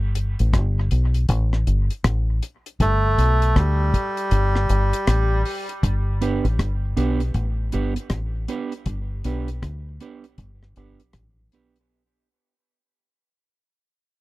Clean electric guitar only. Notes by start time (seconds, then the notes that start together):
6.21 B3 D4 G4 B4
6.97 B3 D4 G4 B4
7.73 B3 D4 G4 B4
7.96 muted clean electric guitar stroke
8.48 B3 D4 G4 B4
9.25 B3 D4 G4 B4
10.01 B3 D4 G4 B4
10.77 B3 D4 G4 B4
11.53 B3 D4 G4 B4